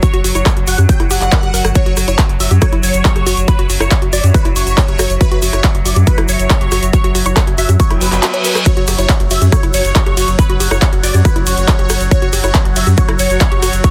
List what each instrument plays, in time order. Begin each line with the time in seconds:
Already playing: synth drone F#3, ambient pad F#4 C#5 F#5
0.03 synth arpeggio sound F#4, supersaw synth C#5, kick, closed hi-hat, shaker
0.14 analog synth bass F#1, synth arpeggio sound F#4, closed hi-hat
0.24 analog synth bass F#1, synth arpeggio sound F#4, open hi-hat, shaker
0.35 analog synth bass F#1, synth arpeggio sound E4, supersaw synth C#5, closed hi-hat, shaker
0.46 kick, cross-stick, clap, closed hi-hat, shaker
0.57 analog synth bass F#1, synth arpeggio sound F#4, closed hi-hat
0.67 analog synth bass F#1, synth arpeggio sound F#4, supersaw synth F#5, open hi-hat, shaker
0.78 analog synth bass F#2, synth arpeggio sound G4, closed hi-hat, shaker
0.89 synth arpeggio sound F#4, supersaw synth G5, kick, closed hi-hat, shaker
1.00 analog synth bass F#1, synth arpeggio sound E4, cross-stick, closed hi-hat
1.11 analog synth bass F#1, synth arpeggio sound G4, supersaw synth F#5, open hi-hat, shaker
1.21 analog synth bass F#1, synth arpeggio sound G4, clap, closed hi-hat, shaker
1.32 synth arpeggio sound A#4, kick, clap, closed hi-hat, shaker
1.43 analog synth bass F#1, synth arpeggio sound G4, closed hi-hat
1.54 analog synth bass F#1, synth arpeggio sound A#4, open hi-hat, shaker
1.65 analog synth bass G1, cross-stick, closed hi-hat, shaker
1.75 synth arpeggio sound F#4, supersaw synth C#5, kick, closed hi-hat, shaker
1.86 analog synth bass F#1, synth arpeggio sound F#4, closed hi-hat
1.97 analog synth bass F#1, synth arpeggio sound F#4, cross-stick, open hi-hat, shaker
2.08 analog synth bass F#1, synth arpeggio sound E4, supersaw synth C#5, closed hi-hat, shaker
2.19 kick, clap, closed hi-hat, shaker
2.29 analog synth bass F#1, synth arpeggio sound F#4, closed hi-hat
2.38 analog synth bass F#1, synth arpeggio sound F#4, ambient pad E5, supersaw synth E5, open hi-hat, shaker
2.51 analog synth bass F#2, synth arpeggio sound G4, closed hi-hat, shaker
2.61 synth arpeggio sound F#4, supersaw synth C#5, kick, cross-stick, closed hi-hat, shaker
2.73 analog synth bass F#1, synth arpeggio sound E4, closed hi-hat
2.83 analog synth bass F#1, supersaw synth C#5, open hi-hat, shaker
2.93 analog synth bass F#1, closed hi-hat, shaker
3.05 synth arpeggio sound G5, kick, clap, closed hi-hat, shaker
3.16 analog synth bass F#1, synth arpeggio sound G4, cross-stick, closed hi-hat
3.26 analog synth bass F#1, synth arpeggio sound F#4, open hi-hat, shaker
3.37 analog synth bass F#1, closed hi-hat, shaker
3.48 synth arpeggio sound F#4, supersaw synth B4, kick, closed hi-hat, shaker
3.59 analog synth bass F#1, synth arpeggio sound F#4, closed hi-hat
3.70 analog synth bass F#1, synth arpeggio sound F#4, open hi-hat, shaker
3.80 analog synth bass F#1, synth arpeggio sound E4, supersaw synth C#5, cross-stick, closed hi-hat, shaker
3.91 kick, clap, closed hi-hat, shaker
4.02 analog synth bass F#1, synth arpeggio sound F#4, closed hi-hat
4.13 analog synth bass F#1, synth arpeggio sound F#4, supersaw synth D5, open hi-hat, shaker
4.24 analog synth bass F#2, synth arpeggio sound G4, closed hi-hat, shaker
4.34 synth arpeggio sound F#4, supersaw synth B4, kick, cross-stick, closed hi-hat, shaker
4.45 analog synth bass F#1, synth arpeggio sound E4, closed hi-hat
4.56 analog synth bass F#1, supersaw synth C#5, open hi-hat, shaker
4.67 analog synth bass F#1, closed hi-hat, shaker
4.78 synth arpeggio sound G5, kick, clap, closed hi-hat, shaker
4.88 analog synth bass F#1, synth arpeggio sound G4, closed hi-hat
4.99 analog synth bass F#1, synth arpeggio sound F#4, cross-stick, open hi-hat, shaker
5.10 analog synth bass F#1, closed hi-hat, shaker
5.21 synth arpeggio sound F#4, supersaw synth B4, kick, closed hi-hat, shaker
5.32 analog synth bass F#1, synth arpeggio sound F#4, closed hi-hat
5.42 analog synth bass F#1, synth arpeggio sound F#4, open hi-hat, shaker
5.53 analog synth bass F#1, synth arpeggio sound E4, supersaw synth C#5, cross-stick, closed hi-hat, shaker
5.64 kick, clap, closed hi-hat, shaker
5.75 analog synth bass F#1, synth arpeggio sound F#4, closed hi-hat
5.85 analog synth bass F#1, synth arpeggio sound F#4, supersaw synth D5, open hi-hat, shaker
5.95 analog synth bass F#2, synth arpeggio sound G4, closed hi-hat, shaker
6.07 synth arpeggio sound F#4, supersaw synth B4, kick, closed hi-hat, shaker
6.18 analog synth bass F#1, synth arpeggio sound E4, cross-stick, closed hi-hat
6.28 analog synth bass F#1, supersaw synth C#5, open hi-hat, shaker
6.39 analog synth bass F#1, closed hi-hat, shaker
6.50 synth arpeggio sound G5, kick, clap, closed hi-hat, shaker
6.61 analog synth bass F#1, synth arpeggio sound G4, closed hi-hat
6.72 analog synth bass F#1, synth arpeggio sound F#4, cross-stick, open hi-hat, shaker
6.83 analog synth bass F#1, closed hi-hat, shaker
6.93 synth arpeggio sound F#4, supersaw synth C#5, kick, closed hi-hat, shaker
7.04 analog synth bass F#1, synth arpeggio sound F#4, closed hi-hat
7.15 analog synth bass F#1, synth arpeggio sound F#4, open hi-hat, shaker
7.25 analog synth bass F#1, synth arpeggio sound E4, supersaw synth C#5, closed hi-hat, shaker
7.37 kick, cross-stick, clap, closed hi-hat, shaker
7.47 analog synth bass F#1, synth arpeggio sound F#4, closed hi-hat
7.58 analog synth bass F#1, synth arpeggio sound F#4, supersaw synth E5, open hi-hat, shaker
7.69 analog synth bass F#2, synth arpeggio sound G4, closed hi-hat, shaker
7.80 synth arpeggio sound F#4, supersaw synth C#5, kick, closed hi-hat, reverse cymbal, shaker
7.90 analog synth bass E1, synth arpeggio sound E4, cross-stick, closed hi-hat
8.01 analog synth bass F#1, supersaw synth B4, open hi-hat, shaker
8.12 analog synth bass F#1, synth arpeggio sound F#4, clap, closed hi-hat, shaker
8.23 synth arpeggio sound F#4, clap, closed hi-hat, shaker
8.34 synth arpeggio sound C#5, closed hi-hat
8.44 synth arpeggio sound A#4, open hi-hat, shaker
8.55 cross-stick, closed hi-hat, shaker
8.66 synth drone F#3, synth arpeggio sound F#4, supersaw synth C#5, kick, closed hi-hat, ride, shaker
8.77 analog synth bass F#1, synth arpeggio sound F#4, closed hi-hat
8.87 analog synth bass F#1, synth arpeggio sound G4, cross-stick, open hi-hat, ride, shaker
8.98 analog synth bass F#1, synth arpeggio sound E4, supersaw synth C#5, closed hi-hat, shaker
9.09 kick, clap, closed hi-hat, ride, shaker
9.20 analog synth bass F#1, synth arpeggio sound F#4, closed hi-hat
9.28 analog synth bass F#1, synth arpeggio sound F#4, supersaw synth E5, ambient pad F#5, open hi-hat, ride, shaker
9.42 analog synth bass F#2, synth arpeggio sound G4, closed hi-hat, shaker
9.52 synth arpeggio sound F#4, supersaw synth C#5, kick, cross-stick, closed hi-hat, ride, shaker
9.63 analog synth bass F#1, synth arpeggio sound E4, closed hi-hat
9.74 analog synth bass F#1, supersaw synth C#5, open hi-hat, ride, shaker
9.85 analog synth bass F#1, closed hi-hat, shaker
9.95 synth arpeggio sound G5, kick, clap, closed hi-hat, ride, shaker
10.06 analog synth bass F#1, synth arpeggio sound G4, cross-stick, closed hi-hat
10.17 analog synth bass F#1, synth arpeggio sound F#4, open hi-hat, ride, shaker
10.28 analog synth bass F#1, closed hi-hat, shaker
10.39 synth arpeggio sound F#4, supersaw synth B4, kick, closed hi-hat, ride, shaker
10.50 analog synth bass F#1, synth arpeggio sound F#4, closed hi-hat
10.60 analog synth bass F#1, synth arpeggio sound G4, open hi-hat, ride, shaker
10.71 analog synth bass F#1, synth arpeggio sound E4, supersaw synth C#5, cross-stick, closed hi-hat, shaker
10.82 kick, clap, closed hi-hat, ride, shaker
10.93 analog synth bass F#1, synth arpeggio sound F#4, closed hi-hat
11.03 analog synth bass F#1, synth arpeggio sound F#4, supersaw synth D5, open hi-hat, ride, shaker
11.14 analog synth bass F#2, synth arpeggio sound G4, closed hi-hat, shaker
11.25 synth arpeggio sound F#4, supersaw synth B4, kick, cross-stick, closed hi-hat, ride, shaker
11.36 analog synth bass F#1, synth arpeggio sound E4, closed hi-hat
11.46 analog synth bass F#1, supersaw synth C#5, open hi-hat, ride, shaker
11.57 analog synth bass F#1, closed hi-hat, shaker
11.68 synth arpeggio sound G5, kick, clap, closed hi-hat, ride, shaker
11.79 analog synth bass F#1, synth arpeggio sound G4, closed hi-hat
11.89 analog synth bass F#1, synth arpeggio sound F#4, cross-stick, open hi-hat, ride, shaker
12.01 analog synth bass F#1, closed hi-hat, shaker
12.11 synth arpeggio sound F#4, supersaw synth C#5, kick, closed hi-hat, ride, shaker
12.22 analog synth bass F#1, synth arpeggio sound F#4, closed hi-hat
12.33 analog synth bass F#1, synth arpeggio sound G4, open hi-hat, ride, shaker
12.43 analog synth bass F#1, synth arpeggio sound E4, supersaw synth C#5, cross-stick, closed hi-hat, shaker
12.54 kick, clap, closed hi-hat, ride, shaker
12.65 analog synth bass F#1, synth arpeggio sound F#4, closed hi-hat
12.76 analog synth bass F#1, synth arpeggio sound F#4, supersaw synth E5, open hi-hat, ride, shaker
12.87 analog synth bass F#2, synth arpeggio sound G4, closed hi-hat, shaker
12.97 synth arpeggio sound F#4, supersaw synth C#5, kick, closed hi-hat, ride, shaker
13.09 analog synth bass F#1, synth arpeggio sound E4, cross-stick, closed hi-hat
13.19 analog synth bass F#1, supersaw synth C#5, open hi-hat, ride, shaker
13.30 analog synth bass F#1, closed hi-hat, shaker
13.40 synth arpeggio sound G5, kick, clap, closed hi-hat, ride, shaker
13.52 analog synth bass F#1, synth arpeggio sound G4, closed hi-hat
13.62 analog synth bass F#1, synth arpeggio sound F#4, cross-stick, open hi-hat, ride, shaker
13.73 analog synth bass F#1, closed hi-hat, shaker
13.84 synth arpeggio sound F#4, supersaw synth C#5, kick, closed hi-hat, ride, shaker